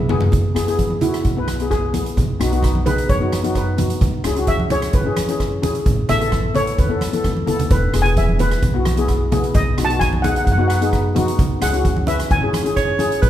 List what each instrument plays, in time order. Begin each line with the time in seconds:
0.09 steel pan B3 E4 G#4, floor tom, low conga
0.21 floor tom, high conga
0.32 upright bass E2, kick, closed hi-hat, low conga
0.55 upright bass E2, steel pan B3 E4 G#4, cross-stick, closed hi-hat
0.67 steel pan B3 E4 G#4, closed hi-hat
0.79 kick, closed hi-hat, high conga
0.90 high conga
1.01 steel pan B3 E4 F#4, closed hi-hat, low conga
1.14 cross-stick, closed hi-hat
1.24 upright bass B1, kick, closed hi-hat
1.37 steel pan B3 E4 B4
1.48 cross-stick, closed hi-hat, high conga
1.60 steel pan B3 E4 G#4, closed hi-hat
1.71 steel pan G#4, kick, cross-stick, closed hi-hat
1.93 steel pan B3 E4 G#4, closed hi-hat, high conga, low conga
2.06 closed hi-hat
2.17 upright bass B1, kick, closed hi-hat, low conga
2.40 upright bass B1, steel pan B3 D#4 F#4, cross-stick, closed hi-hat
2.52 steel pan B3 D#4 F#4, closed hi-hat
2.63 kick, cross-stick, closed hi-hat, high conga
2.75 high conga
2.85 steel pan B3 D#4 G#4 B4, closed hi-hat, low conga
2.98 closed hi-hat
3.09 upright bass F#2, steel pan C#5, kick, closed hi-hat
3.20 steel pan B3 D#4 F#4
3.32 cross-stick, closed hi-hat, high conga
3.43 steel pan B3 D#4 F#4, closed hi-hat
3.55 steel pan B4, kick, cross-stick, closed hi-hat
3.77 steel pan B3 D#4 F#4, closed hi-hat, high conga, low conga
3.90 closed hi-hat
4.01 upright bass C#2, kick, closed hi-hat, low conga
4.24 upright bass C#2, steel pan C#4 E4 G#4, cross-stick, closed hi-hat
4.36 steel pan C#4 E4 F#4, closed hi-hat
4.47 steel pan E5, kick, closed hi-hat, high conga
4.60 high conga
4.70 steel pan C#4 E4 G#4 C#5, closed hi-hat, low conga
4.82 cross-stick, closed hi-hat
4.93 upright bass G#1, steel pan B4, kick, closed hi-hat
5.05 steel pan C#4 E4 G#4
5.16 cross-stick, closed hi-hat, high conga
5.28 steel pan C#4 E4 G#4, closed hi-hat
5.40 kick, cross-stick, closed hi-hat
5.62 steel pan C#4 E4 G#4, closed hi-hat, high conga, low conga
5.75 closed hi-hat
5.86 upright bass A1, kick, closed hi-hat, low conga
6.09 upright bass A1, steel pan B3 E4 A4 E5, cross-stick, closed hi-hat, low conga
6.20 steel pan B3 E4 A4, closed hi-hat
6.32 kick, cross-stick, closed hi-hat, high conga
6.54 steel pan B3 E4 A4 C#5, closed hi-hat, low conga
6.67 closed hi-hat
6.78 upright bass E2, steel pan B4, kick, closed hi-hat
6.89 steel pan B3 E4 A4
7.01 cross-stick, closed hi-hat, high conga
7.13 steel pan B3 E4 A4, closed hi-hat, high conga
7.24 upright bass C#2, kick, cross-stick, closed hi-hat, high conga
7.36 high conga
7.46 upright bass D#2, steel pan B3 E4 A4, closed hi-hat, low conga
7.59 closed hi-hat, low conga
7.70 upright bass E1, steel pan B4, kick, closed hi-hat, low conga
7.93 upright bass E1, steel pan B3 E4 G#4, cross-stick, closed hi-hat
8.02 steel pan B3 E4 G#4 G#5, closed hi-hat
8.17 steel pan E5, kick, closed hi-hat, high conga
8.29 high conga
8.38 steel pan B3 E4 B4, closed hi-hat, low conga
8.51 cross-stick, closed hi-hat
8.62 upright bass B1, kick, closed hi-hat
8.74 steel pan B3 E4 F#4
8.85 cross-stick, closed hi-hat, high conga
8.97 steel pan B3 E4 G#4, closed hi-hat
9.08 kick, cross-stick, closed hi-hat
9.32 steel pan B3 E4 G#4, closed hi-hat, high conga, low conga
9.44 closed hi-hat
9.54 upright bass B1, steel pan D#5, kick, closed hi-hat, low conga
9.77 upright bass B1, steel pan B3 D#4 F#4, cross-stick, closed hi-hat
9.85 steel pan A5
9.89 steel pan B3 D#4 F#4, closed hi-hat
9.99 steel pan G#5, kick, cross-stick, closed hi-hat, high conga
10.13 high conga
10.22 steel pan B3 D#4 G#4 F#5, closed hi-hat, low conga
10.30 steel pan F#5
10.36 steel pan F#5, closed hi-hat
10.45 upright bass F#2, steel pan F#5, kick, closed hi-hat
10.52 steel pan F#5
10.57 steel pan B3 D#4 F#4 F#5
10.68 steel pan F#5, cross-stick, closed hi-hat
10.75 steel pan F#5
10.81 steel pan B3 D#4 G#4, closed hi-hat
10.93 kick, cross-stick, closed hi-hat
11.15 steel pan B3 D#4 F#4, closed hi-hat, high conga, low conga
11.28 closed hi-hat
11.39 upright bass C#2, kick, closed hi-hat, low conga
11.61 upright bass C#2, steel pan C#4 E4 G#4 F#5, cross-stick, closed hi-hat
11.73 steel pan C#4 E4 F#4, closed hi-hat
11.85 kick, closed hi-hat, high conga
11.96 high conga
12.06 steel pan C#4 E4 B4 E5, closed hi-hat, low conga
12.20 cross-stick, closed hi-hat
12.31 upright bass G#1, steel pan G#5, kick, closed hi-hat
12.42 steel pan C#4 E4 G#4
12.53 cross-stick, closed hi-hat, high conga
12.64 steel pan C#4 E4 G#4, closed hi-hat
12.76 alto saxophone C#5, kick, cross-stick, closed hi-hat
12.98 steel pan C#4 E4 G#4, closed hi-hat, high conga
13.12 closed hi-hat
13.22 upright bass B1, alto saxophone B4, kick, closed hi-hat